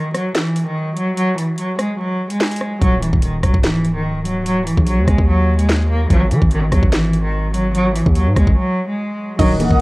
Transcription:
0.00 0.12 D#3 medium
0.14 0.32 F#3 medium
0.14 cross-stick medium
0.14 closed hi-hat medium
0.35 0.65 E3 medium
0.35 snare loud
0.35 clap loud
0.35 closed hi-hat medium
0.56 closed hi-hat medium
0.66 0.95 D#3 medium
0.96 1.14 F#3 medium
0.96 closed hi-hat medium
1.17 1.35 F#3 loud
1.17 closed hi-hat medium
1.38 1.56 E3 medium
1.38 closed hi-hat medium
1.58 1.76 F#3 medium
1.58 closed hi-hat medium
1.79 1.97 G#3 medium
1.79 cross-stick loud
1.79 closed hi-hat medium
1.99 2.29 F#3 medium
2.30 2.79 G#3 medium
2.30 closed hi-hat medium
2.40 snare loud
2.40 clap loud
2.40 closed hi-hat soft
2.46 closed hi-hat medium
2.51 closed hi-hat medium
2.56 closed hi-hat medium
2.61 cross-stick medium
2.82 3.12 D#1 loud
2.82 2.99 F#3 loud
2.82 kick loud
2.82 closed hi-hat medium
3.02 3.20 E3 medium
3.02 closed hi-hat medium
3.13 3.42 D#1 loud
3.13 kick medium
3.22 3.40 D#3 medium
3.22 closed hi-hat medium
3.43 3.53 D#1 loud
3.43 3.61 F#3 medium
3.43 kick medium
3.43 cross-stick medium
3.43 closed hi-hat medium
3.54 4.73 C#1 loud
3.54 kick medium
3.63 3.93 E3 medium
3.63 snare loud
3.63 clap medium
3.63 closed hi-hat medium
3.85 closed hi-hat medium
3.95 4.24 D#3 medium
4.25 4.43 F#3 medium
4.25 closed hi-hat medium
4.46 4.64 F#3 loud
4.46 closed hi-hat medium
4.66 4.84 E3 medium
4.66 closed hi-hat medium
4.77 4.99 A#1 loud
4.77 kick medium
4.87 5.05 F#3 medium
4.87 closed hi-hat medium
4.98 5.07 D#2 loud
5.08 5.18 D#2 loud
5.08 5.25 G#3 medium
5.08 kick loud
5.08 cross-stick medium
5.08 closed hi-hat medium
5.18 6.07 D#2 loud
5.18 kick medium
5.28 5.58 F#3 loud
5.59 5.88 G#3 medium
5.59 closed hi-hat medium
5.69 snare loud
5.69 clap medium
5.69 closed hi-hat medium
5.90 6.08 A#3 medium
6.10 6.32 G#1 loud
6.10 6.28 F#3 loud
6.10 kick loud
6.10 closed hi-hat medium
6.31 6.41 D#3 loud
6.31 6.49 E3 medium
6.31 closed hi-hat medium
6.42 6.71 G#1 loud
6.42 kick medium
6.51 6.69 D#3 medium
6.51 closed hi-hat medium
6.72 6.82 D#2 loud
6.72 6.90 F#3 medium
6.72 kick medium
6.72 cross-stick loud
6.72 closed hi-hat medium
6.83 8.02 G#1 loud
6.83 kick medium
6.92 7.22 E3 medium
6.92 snare loud
6.92 clap loud
6.92 closed hi-hat medium
7.13 closed hi-hat medium
7.24 7.52 D#3 medium
7.54 7.72 F#3 medium
7.54 closed hi-hat medium
7.75 7.92 F#3 loud
7.75 closed hi-hat medium
7.95 8.13 E3 medium
7.95 closed hi-hat medium
8.06 8.28 D#2 loud
8.06 kick medium
8.15 8.34 F#3 medium
8.15 closed hi-hat medium
8.27 8.36 G#2 loud
8.36 8.47 D#2 loud
8.36 8.54 G#3 medium
8.36 kick medium
8.36 cross-stick loud
8.36 closed hi-hat medium
8.47 8.56 G#1 loud
8.47 kick medium
8.57 8.86 F#3 medium
8.88 9.36 G#3 medium
9.39 9.69 D#1 loud
9.39 9.81 D#3 medium
9.39 9.57 F#3 loud
9.39 9.81 A#4 medium
9.39 9.78 D#5 loud
9.39 9.81 D#5 medium
9.39 9.81 F#5 medium
9.39 9.81 D#6 medium
9.39 kick loud
9.39 closed hi-hat medium
9.39 crash loud
9.59 9.77 E3 medium
9.59 9.81 A#3 medium
9.59 closed hi-hat medium
9.71 9.81 D#1 loud
9.71 kick medium

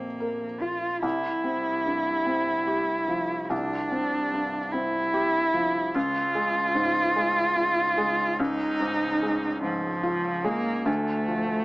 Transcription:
0.00 0.99 A#1 medium
0.00 1.05 A#1 medium
0.00 1.06 F2 soft
0.00 0.63 A#3 medium
0.00 1.06 C4 soft
0.00 0.62 F4 soft
0.20 0.87 A#4 soft
0.62 1.03 F4 medium
0.62 1.02 F4 medium
1.02 3.46 C2 medium
1.02 5.97 C2 medium
1.02 3.52 E4 loud
1.44 2.10 C4 soft
1.86 2.51 G2 soft
2.26 2.92 C4 soft
2.67 3.34 G4 soft
3.08 3.75 F3 medium
3.50 5.91 C2 medium
3.50 4.74 D4 loud
3.91 4.57 C4 medium
4.32 4.98 G2 medium
4.73 5.39 C4 medium
4.73 5.97 E4 loud
5.14 5.79 G4 medium
5.54 5.95 F3 medium
5.95 8.35 C#2 medium
5.95 10.89 C#2 medium
5.95 8.41 F4 loud
6.35 7.00 G#3 medium
6.75 7.41 G#2 medium
7.16 7.82 G#3 medium
7.56 8.22 F4 medium
7.98 8.63 G#3 medium
8.39 10.83 C#2 medium
8.39 9.63 D#4 loud
8.80 9.46 G#2 medium
9.22 9.88 G#3 medium
9.63 10.28 G#2 medium
9.63 10.47 F3 loud
10.03 10.70 F4 medium
10.44 10.87 G#3 medium
10.44 10.88 A#3 loud
10.85 11.65 D2 medium
10.85 11.65 A3 loud
11.28 11.65 F3 medium

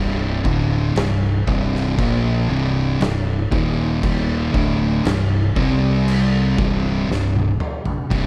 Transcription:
0.00 0.41 C1 loud
0.00 0.43 C2 loud
0.00 0.44 G2 loud
0.00 0.44 C3 loud
0.45 0.93 D1 loud
0.45 0.95 D2 loud
0.45 0.95 A2 loud
0.45 0.95 D3 loud
0.45 kick loud
0.96 1.44 C1 medium
0.96 1.37 C2 medium
0.96 1.37 G2 medium
0.96 snare loud
0.96 crash medium
1.47 1.95 C1 loud
1.47 1.97 C2 medium
1.47 1.97 G2 loud
1.47 1.97 C3 loud
1.47 kick loud
1.75 snare soft
1.98 2.46 A#1 loud
1.98 2.48 A#2 loud
1.98 2.48 F3 loud
1.98 2.49 A#3 loud
1.98 kick loud
1.98 crash medium
2.48 2.97 C1 medium
2.48 2.99 C2 loud
2.48 2.99 G2 loud
2.48 2.99 C3 loud
3.00 3.48 C1 medium
3.00 3.41 C2 medium
3.00 3.41 G2 medium
3.00 snare loud
3.00 crash medium
3.51 4.50 D#1 loud
3.51 4.52 D#2 medium
3.51 4.52 A#2 loud
3.51 4.53 D#3 loud
3.51 kick loud
4.03 kick loud
4.03 crash medium
4.53 5.02 D1 loud
4.53 5.03 D2 loud
4.53 5.03 A2 loud
4.53 5.04 D3 loud
4.53 kick loud
5.04 5.53 C1 medium
5.04 5.45 C2 medium
5.04 5.46 G2 medium
5.04 snare loud
5.04 crash medium
5.56 6.54 C2 loud
5.56 6.56 C3 medium
5.56 6.57 G3 medium
5.56 6.57 C4 loud
5.56 kick loud
6.08 crash medium
6.57 7.06 C1 loud
6.57 7.07 C2 loud
6.57 7.08 G2 medium
6.57 7.08 C3 loud
6.57 kick loud
7.08 7.57 C1 medium
7.08 7.50 C2 medium
7.08 7.50 G2 medium
7.08 snare medium
7.35 high tom medium
7.60 mid tom loud
7.85 floor tom loud
8.10 8.27 C1 loud
8.10 8.27 C2 loud
8.10 8.27 G2 loud
8.10 8.27 C3 loud
8.10 kick loud
8.10 crash medium

